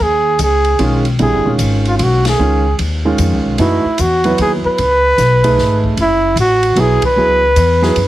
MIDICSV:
0, 0, Header, 1, 6, 480
1, 0, Start_track
1, 0, Time_signature, 3, 2, 24, 8
1, 0, Tempo, 398671
1, 9725, End_track
2, 0, Start_track
2, 0, Title_t, "Trumpet"
2, 0, Program_c, 0, 56
2, 33, Note_on_c, 0, 68, 86
2, 495, Note_off_c, 0, 68, 0
2, 519, Note_on_c, 0, 68, 86
2, 1242, Note_off_c, 0, 68, 0
2, 1471, Note_on_c, 0, 68, 88
2, 1847, Note_off_c, 0, 68, 0
2, 2261, Note_on_c, 0, 65, 64
2, 2364, Note_off_c, 0, 65, 0
2, 2380, Note_on_c, 0, 65, 46
2, 2442, Note_on_c, 0, 66, 70
2, 2460, Note_off_c, 0, 65, 0
2, 2732, Note_off_c, 0, 66, 0
2, 2749, Note_on_c, 0, 68, 73
2, 3335, Note_off_c, 0, 68, 0
2, 4336, Note_on_c, 0, 64, 77
2, 4823, Note_on_c, 0, 66, 73
2, 4841, Note_off_c, 0, 64, 0
2, 5291, Note_off_c, 0, 66, 0
2, 5314, Note_on_c, 0, 68, 79
2, 5446, Note_off_c, 0, 68, 0
2, 5623, Note_on_c, 0, 71, 99
2, 6998, Note_off_c, 0, 71, 0
2, 7237, Note_on_c, 0, 64, 86
2, 7665, Note_off_c, 0, 64, 0
2, 7702, Note_on_c, 0, 66, 81
2, 8186, Note_on_c, 0, 68, 85
2, 8204, Note_off_c, 0, 66, 0
2, 8482, Note_off_c, 0, 68, 0
2, 8497, Note_on_c, 0, 71, 98
2, 9725, Note_off_c, 0, 71, 0
2, 9725, End_track
3, 0, Start_track
3, 0, Title_t, "Grand piano"
3, 0, Program_c, 1, 0
3, 950, Note_on_c, 1, 51, 60
3, 952, Note_on_c, 1, 56, 57
3, 958, Note_on_c, 1, 61, 58
3, 959, Note_on_c, 1, 65, 64
3, 1234, Note_off_c, 1, 51, 0
3, 1235, Note_off_c, 1, 56, 0
3, 1238, Note_off_c, 1, 61, 0
3, 1238, Note_off_c, 1, 65, 0
3, 1436, Note_on_c, 1, 50, 57
3, 1441, Note_on_c, 1, 55, 45
3, 1443, Note_on_c, 1, 64, 59
3, 1444, Note_on_c, 1, 60, 48
3, 1717, Note_off_c, 1, 50, 0
3, 1720, Note_off_c, 1, 55, 0
3, 1721, Note_off_c, 1, 60, 0
3, 1721, Note_off_c, 1, 64, 0
3, 1748, Note_on_c, 1, 51, 50
3, 1749, Note_on_c, 1, 56, 48
3, 1753, Note_on_c, 1, 61, 49
3, 1757, Note_on_c, 1, 65, 55
3, 2777, Note_off_c, 1, 51, 0
3, 2778, Note_off_c, 1, 56, 0
3, 2780, Note_off_c, 1, 61, 0
3, 2781, Note_off_c, 1, 65, 0
3, 2876, Note_on_c, 1, 51, 59
3, 2879, Note_on_c, 1, 61, 49
3, 2880, Note_on_c, 1, 56, 44
3, 2885, Note_on_c, 1, 65, 56
3, 3158, Note_off_c, 1, 51, 0
3, 3159, Note_off_c, 1, 61, 0
3, 3160, Note_off_c, 1, 56, 0
3, 3162, Note_off_c, 1, 65, 0
3, 3672, Note_on_c, 1, 51, 62
3, 3677, Note_on_c, 1, 56, 54
3, 3677, Note_on_c, 1, 61, 52
3, 3681, Note_on_c, 1, 65, 66
3, 4287, Note_off_c, 1, 51, 0
3, 4289, Note_off_c, 1, 56, 0
3, 4289, Note_off_c, 1, 61, 0
3, 4291, Note_off_c, 1, 65, 0
3, 4318, Note_on_c, 1, 52, 63
3, 4324, Note_on_c, 1, 57, 52
3, 4326, Note_on_c, 1, 63, 58
3, 4330, Note_on_c, 1, 66, 64
3, 4599, Note_off_c, 1, 52, 0
3, 4602, Note_off_c, 1, 57, 0
3, 4603, Note_off_c, 1, 63, 0
3, 4605, Note_off_c, 1, 66, 0
3, 5113, Note_on_c, 1, 54, 60
3, 5117, Note_on_c, 1, 59, 57
3, 5121, Note_on_c, 1, 64, 55
3, 5121, Note_on_c, 1, 71, 72
3, 5727, Note_off_c, 1, 54, 0
3, 5729, Note_off_c, 1, 59, 0
3, 5731, Note_off_c, 1, 64, 0
3, 5731, Note_off_c, 1, 71, 0
3, 6543, Note_on_c, 1, 57, 68
3, 6546, Note_on_c, 1, 63, 60
3, 6552, Note_on_c, 1, 68, 60
3, 6555, Note_on_c, 1, 71, 77
3, 7161, Note_off_c, 1, 57, 0
3, 7162, Note_off_c, 1, 63, 0
3, 7165, Note_off_c, 1, 68, 0
3, 7167, Note_off_c, 1, 71, 0
3, 8148, Note_on_c, 1, 54, 70
3, 8155, Note_on_c, 1, 59, 68
3, 8155, Note_on_c, 1, 64, 67
3, 8160, Note_on_c, 1, 68, 75
3, 8432, Note_off_c, 1, 54, 0
3, 8436, Note_off_c, 1, 59, 0
3, 8436, Note_off_c, 1, 64, 0
3, 8438, Note_off_c, 1, 68, 0
3, 8636, Note_on_c, 1, 54, 59
3, 8638, Note_on_c, 1, 59, 54
3, 8639, Note_on_c, 1, 64, 55
3, 8645, Note_on_c, 1, 68, 64
3, 8916, Note_off_c, 1, 54, 0
3, 8917, Note_off_c, 1, 59, 0
3, 8917, Note_off_c, 1, 64, 0
3, 8920, Note_off_c, 1, 68, 0
3, 9416, Note_on_c, 1, 54, 68
3, 9418, Note_on_c, 1, 59, 64
3, 9422, Note_on_c, 1, 64, 60
3, 9427, Note_on_c, 1, 68, 81
3, 9573, Note_off_c, 1, 54, 0
3, 9574, Note_off_c, 1, 59, 0
3, 9576, Note_off_c, 1, 64, 0
3, 9578, Note_off_c, 1, 68, 0
3, 9725, End_track
4, 0, Start_track
4, 0, Title_t, "Upright bass"
4, 0, Program_c, 2, 32
4, 1, Note_on_c, 2, 39, 67
4, 462, Note_off_c, 2, 39, 0
4, 469, Note_on_c, 2, 37, 77
4, 939, Note_off_c, 2, 37, 0
4, 953, Note_on_c, 2, 35, 69
4, 1421, Note_off_c, 2, 35, 0
4, 1438, Note_on_c, 2, 34, 69
4, 1602, Note_off_c, 2, 34, 0
4, 1602, Note_on_c, 2, 30, 47
4, 1747, Note_off_c, 2, 30, 0
4, 1755, Note_on_c, 2, 27, 57
4, 1898, Note_off_c, 2, 27, 0
4, 1905, Note_on_c, 2, 32, 79
4, 2377, Note_off_c, 2, 32, 0
4, 2401, Note_on_c, 2, 35, 77
4, 2866, Note_off_c, 2, 35, 0
4, 2876, Note_on_c, 2, 37, 66
4, 3343, Note_off_c, 2, 37, 0
4, 3359, Note_on_c, 2, 39, 81
4, 3825, Note_off_c, 2, 39, 0
4, 3837, Note_on_c, 2, 41, 84
4, 4010, Note_off_c, 2, 41, 0
4, 4010, Note_on_c, 2, 37, 50
4, 4153, Note_off_c, 2, 37, 0
4, 4160, Note_on_c, 2, 35, 50
4, 4309, Note_off_c, 2, 35, 0
4, 4322, Note_on_c, 2, 42, 77
4, 4610, Note_off_c, 2, 42, 0
4, 4804, Note_on_c, 2, 40, 83
4, 5267, Note_off_c, 2, 40, 0
4, 5283, Note_on_c, 2, 39, 85
4, 5571, Note_off_c, 2, 39, 0
4, 5763, Note_on_c, 2, 37, 73
4, 6226, Note_off_c, 2, 37, 0
4, 6234, Note_on_c, 2, 35, 88
4, 6701, Note_off_c, 2, 35, 0
4, 6713, Note_on_c, 2, 32, 83
4, 7181, Note_off_c, 2, 32, 0
4, 7187, Note_on_c, 2, 30, 70
4, 7647, Note_off_c, 2, 30, 0
4, 7654, Note_on_c, 2, 33, 90
4, 8127, Note_off_c, 2, 33, 0
4, 8134, Note_on_c, 2, 35, 83
4, 8434, Note_off_c, 2, 35, 0
4, 8623, Note_on_c, 2, 37, 73
4, 9094, Note_off_c, 2, 37, 0
4, 9105, Note_on_c, 2, 40, 93
4, 9575, Note_off_c, 2, 40, 0
4, 9583, Note_on_c, 2, 42, 80
4, 9725, Note_off_c, 2, 42, 0
4, 9725, End_track
5, 0, Start_track
5, 0, Title_t, "Muted upright bass strokes"
5, 4635, Note_on_c, 9, 29, 36
5, 4755, Note_off_c, 9, 29, 0
5, 5590, Note_on_c, 9, 29, 33
5, 5711, Note_off_c, 9, 29, 0
5, 9725, End_track
6, 0, Start_track
6, 0, Title_t, "Drums"
6, 468, Note_on_c, 9, 44, 54
6, 468, Note_on_c, 9, 51, 58
6, 588, Note_off_c, 9, 44, 0
6, 588, Note_off_c, 9, 51, 0
6, 776, Note_on_c, 9, 51, 36
6, 897, Note_off_c, 9, 51, 0
6, 949, Note_on_c, 9, 51, 50
6, 1070, Note_off_c, 9, 51, 0
6, 1263, Note_on_c, 9, 51, 35
6, 1383, Note_off_c, 9, 51, 0
6, 1431, Note_on_c, 9, 51, 43
6, 1552, Note_off_c, 9, 51, 0
6, 1912, Note_on_c, 9, 44, 44
6, 1912, Note_on_c, 9, 51, 59
6, 2032, Note_off_c, 9, 44, 0
6, 2032, Note_off_c, 9, 51, 0
6, 2232, Note_on_c, 9, 51, 34
6, 2352, Note_off_c, 9, 51, 0
6, 2398, Note_on_c, 9, 51, 57
6, 2519, Note_off_c, 9, 51, 0
6, 2708, Note_on_c, 9, 51, 55
6, 2712, Note_on_c, 9, 38, 72
6, 2828, Note_off_c, 9, 51, 0
6, 2833, Note_off_c, 9, 38, 0
6, 3356, Note_on_c, 9, 51, 52
6, 3476, Note_off_c, 9, 51, 0
6, 3832, Note_on_c, 9, 44, 45
6, 3832, Note_on_c, 9, 51, 57
6, 3952, Note_off_c, 9, 44, 0
6, 3952, Note_off_c, 9, 51, 0
6, 4312, Note_on_c, 9, 51, 52
6, 4433, Note_off_c, 9, 51, 0
6, 4790, Note_on_c, 9, 44, 54
6, 4790, Note_on_c, 9, 51, 57
6, 4911, Note_off_c, 9, 44, 0
6, 4911, Note_off_c, 9, 51, 0
6, 5104, Note_on_c, 9, 51, 40
6, 5224, Note_off_c, 9, 51, 0
6, 5274, Note_on_c, 9, 51, 54
6, 5395, Note_off_c, 9, 51, 0
6, 5758, Note_on_c, 9, 51, 48
6, 5878, Note_off_c, 9, 51, 0
6, 6238, Note_on_c, 9, 44, 54
6, 6238, Note_on_c, 9, 51, 58
6, 6243, Note_on_c, 9, 38, 32
6, 6359, Note_off_c, 9, 44, 0
6, 6359, Note_off_c, 9, 51, 0
6, 6363, Note_off_c, 9, 38, 0
6, 6549, Note_on_c, 9, 51, 60
6, 6551, Note_on_c, 9, 36, 49
6, 6669, Note_off_c, 9, 51, 0
6, 6671, Note_off_c, 9, 36, 0
6, 6718, Note_on_c, 9, 38, 35
6, 6839, Note_off_c, 9, 38, 0
6, 7028, Note_on_c, 9, 36, 51
6, 7149, Note_off_c, 9, 36, 0
6, 7191, Note_on_c, 9, 51, 54
6, 7312, Note_off_c, 9, 51, 0
6, 7668, Note_on_c, 9, 44, 43
6, 7668, Note_on_c, 9, 51, 65
6, 7789, Note_off_c, 9, 44, 0
6, 7789, Note_off_c, 9, 51, 0
6, 7979, Note_on_c, 9, 51, 44
6, 8100, Note_off_c, 9, 51, 0
6, 8143, Note_on_c, 9, 51, 57
6, 8264, Note_off_c, 9, 51, 0
6, 8452, Note_on_c, 9, 51, 67
6, 8461, Note_on_c, 9, 36, 74
6, 8573, Note_off_c, 9, 51, 0
6, 8581, Note_off_c, 9, 36, 0
6, 9103, Note_on_c, 9, 44, 56
6, 9103, Note_on_c, 9, 51, 62
6, 9224, Note_off_c, 9, 44, 0
6, 9224, Note_off_c, 9, 51, 0
6, 9421, Note_on_c, 9, 38, 33
6, 9542, Note_off_c, 9, 38, 0
6, 9581, Note_on_c, 9, 51, 57
6, 9701, Note_off_c, 9, 51, 0
6, 9725, End_track
0, 0, End_of_file